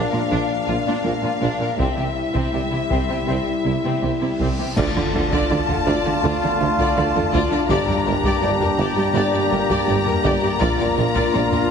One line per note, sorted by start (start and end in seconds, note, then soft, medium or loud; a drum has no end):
0.00 1.63 A#3 soft
0.00 0.11 D4 medium
0.00 0.12 D4 medium
0.00 1.63 D4 soft
0.00 1.75 F5 soft
0.12 0.20 A#2 soft
0.12 0.20 D4 soft
0.12 0.20 A#4 soft
0.31 0.39 A#1 medium
0.31 0.38 A#2 medium
0.31 0.48 D4 medium
0.67 0.75 A#1 soft
0.67 0.75 A#2 soft
0.67 0.75 D4 soft
0.67 0.74 F4 medium
0.86 0.94 A#2 medium
0.86 1.03 D4 medium
1.04 1.12 A#1 soft
1.04 1.12 A#2 soft
1.04 1.12 D4 soft
1.04 1.11 A#4 soft
1.23 1.30 A#2 soft
1.23 1.30 D4 soft
1.23 1.31 F4 soft
1.41 1.49 A#1 medium
1.41 1.48 A#2 medium
1.41 1.59 D4 medium
1.59 1.67 A#2 soft
1.59 1.67 D4 soft
1.59 1.69 A#4 soft
1.78 1.86 C2 medium
1.78 1.87 C2 medium
1.78 1.85 C3 soft
1.78 4.41 G3 soft
1.78 1.96 C4 soft
1.78 1.97 C4 medium
1.78 4.42 E4 medium
1.78 4.57 E5 soft
1.78 taiko medium
1.78 reverse cymbal soft
1.97 2.04 C3 soft
1.97 2.04 C4 soft
1.97 2.05 G4 soft
2.34 2.42 C3 medium
2.34 2.51 C4 soft
2.34 2.52 C4 medium
2.34 taiko medium
2.52 2.61 C2 soft
2.52 2.60 C3 soft
2.52 2.60 C4 soft
2.52 2.60 G4 soft
2.70 2.79 C3 soft
2.70 2.79 C4 soft
2.70 2.78 E4 soft
2.89 2.99 C2 soft
2.89 2.97 C3 soft
2.89 3.08 C4 medium
2.89 3.08 C4 soft
2.89 taiko medium
3.08 3.16 C3 soft
3.08 3.17 C4 soft
3.08 3.16 G4 soft
3.27 3.35 C2 soft
3.27 3.35 C2 medium
3.27 3.35 C3 soft
3.27 3.45 C4 soft
3.27 3.45 C4 medium
3.27 taiko medium
3.64 3.73 C2 soft
3.64 3.72 C3 soft
3.64 3.73 C4 soft
3.64 3.73 E4 soft
3.83 3.91 C3 soft
3.83 4.01 C4 soft
3.83 4.02 C4 soft
4.02 4.10 C2 soft
4.02 4.10 C3 soft
4.02 4.11 C4 soft
4.02 4.10 G4 soft
4.21 4.28 C3 soft
4.21 4.30 C4 soft
4.21 4.29 E4 soft
4.39 4.47 C2 medium
4.39 4.48 C2 soft
4.39 4.47 C3 medium
4.39 4.57 C4 soft
4.39 4.58 C4 soft
4.39 taiko medium
4.58 4.66 C3 soft
4.58 4.67 C4 soft
4.58 4.66 G4 soft
4.76 4.84 D2 medium
4.76 4.84 D3 medium
4.76 7.66 A3 medium
4.76 10.57 D4 medium
4.76 4.94 F4 medium
4.76 7.66 F4 medium
4.76 4.94 D5 medium
4.76 7.65 A5 medium
4.76 concert bass drum medium
4.76 taiko loud
4.76 crash medium
4.76 impact medium
4.95 5.03 D3 medium
4.95 5.03 F4 medium
4.95 5.03 D5 medium
4.95 taiko low soft
5.13 5.21 D2 medium
5.13 5.21 D3 medium
5.13 5.21 F4 medium
5.13 5.20 A4 medium
5.31 5.39 D3 medium
5.31 5.49 F4 medium
5.31 5.48 D5 medium
5.31 taiko loud
5.49 5.57 D2 medium
5.49 5.58 D2 medium
5.49 5.57 D3 medium
5.49 5.58 F4 medium
5.49 5.57 D5 medium
5.68 5.75 D3 medium
5.68 5.76 F4 medium
5.68 5.76 A4 medium
5.68 taiko low medium
5.86 5.94 D2 loud
5.86 5.94 D2 medium
5.86 5.94 D3 medium
5.86 6.03 F4 medium
5.86 6.04 D5 loud
6.04 6.12 D3 medium
6.04 6.12 F4 medium
6.04 6.13 D5 medium
6.23 6.30 D2 medium
6.23 6.31 D2 medium
6.23 6.31 D3 medium
6.23 6.40 F4 medium
6.23 6.40 D5 medium
6.41 6.49 D3 medium
6.41 6.49 F4 medium
6.41 6.50 D5 medium
6.60 6.67 D2 medium
6.60 6.68 D2 medium
6.60 6.67 D3 medium
6.60 6.67 F4 medium
6.60 6.68 A4 medium
6.78 6.86 D3 loud
6.78 6.95 F4 medium
6.78 6.95 D5 medium
6.78 taiko medium
6.96 7.04 D2 medium
6.96 7.04 D3 medium
6.96 7.03 F4 medium
6.96 7.04 D5 medium
7.14 7.22 D3 medium
7.14 7.22 F4 medium
7.14 7.23 A4 medium
7.14 taiko low soft
7.32 7.40 D2 medium
7.32 7.41 D2 medium
7.32 7.41 D3 medium
7.32 7.50 F4 loud
7.32 7.50 D5 medium
7.32 taiko medium
7.51 7.58 D3 medium
7.51 7.58 F4 medium
7.51 7.59 D5 medium
7.69 7.77 G1 loud
7.69 7.77 G2 medium
7.69 11.71 A#3 medium
7.69 7.86 G4 medium
7.69 10.57 G4 medium
7.69 7.87 D5 medium
7.69 11.71 A#5 medium
7.69 taiko loud
7.87 7.95 G2 medium
7.87 7.94 G4 medium
7.87 7.96 D5 medium
7.87 taiko low soft
8.05 8.13 G1 medium
8.05 8.13 G2 medium
8.05 8.13 G4 medium
8.05 8.14 A#4 medium
8.23 8.31 G2 loud
8.23 8.41 G4 medium
8.23 8.41 D5 medium
8.23 taiko medium
8.42 8.49 G1 medium
8.42 8.50 G1 medium
8.42 8.49 G2 medium
8.42 8.49 G4 medium
8.42 8.50 D5 medium
8.60 8.68 G2 medium
8.60 8.67 G4 medium
8.60 8.67 A#4 medium
8.60 taiko low soft
8.78 8.85 G1 medium
8.78 8.86 G1 medium
8.78 8.86 G2 medium
8.78 8.95 G4 medium
8.78 8.95 D5 medium
8.97 9.04 G2 medium
8.97 9.04 G4 medium
8.97 9.04 D5 medium
9.14 9.22 G1 medium
9.14 9.22 G1 loud
9.14 9.23 G2 medium
9.14 9.31 G4 medium
9.14 9.32 D5 loud
9.33 9.40 G2 medium
9.33 9.40 G4 medium
9.33 9.40 D5 medium
9.51 9.59 G1 medium
9.51 9.58 G2 medium
9.51 9.59 G4 medium
9.51 9.59 A#4 medium
9.69 9.77 G2 medium
9.69 9.86 G4 medium
9.69 9.87 D5 medium
9.69 taiko loud
9.87 9.95 G1 medium
9.87 9.95 G2 medium
9.87 9.95 G4 medium
9.87 9.95 D5 medium
10.06 10.13 G2 medium
10.06 10.13 G4 medium
10.06 10.14 A#4 medium
10.06 taiko low medium
10.24 10.31 G1 loud
10.24 10.32 G1 medium
10.24 10.32 G2 medium
10.24 10.41 G4 medium
10.24 10.41 D5 medium
10.24 taiko medium
10.42 10.50 G2 medium
10.42 10.49 G4 medium
10.42 10.50 D5 medium
10.60 10.68 A#1 loud
10.60 10.68 A#1 medium
10.60 10.68 A#2 medium
10.60 11.71 D4 medium
10.60 10.77 F4 medium
10.60 11.71 F4 medium
10.60 10.77 D5 loud
10.60 taiko loud
10.78 10.87 A#2 medium
10.78 10.86 F4 medium
10.78 10.86 D5 medium
10.78 taiko low medium
10.96 11.04 A#1 medium
10.96 11.05 A#2 medium
10.96 11.04 F4 medium
10.96 11.04 A#4 medium
11.14 11.23 A#2 loud
11.14 11.32 F4 medium
11.14 11.31 D5 medium
11.14 taiko loud
11.33 11.41 A#1 medium
11.33 11.41 A#2 medium
11.33 11.40 F4 medium
11.33 11.41 D5 medium
11.51 11.59 A#2 medium
11.51 11.59 F4 medium
11.51 11.59 A#4 medium
11.51 taiko low medium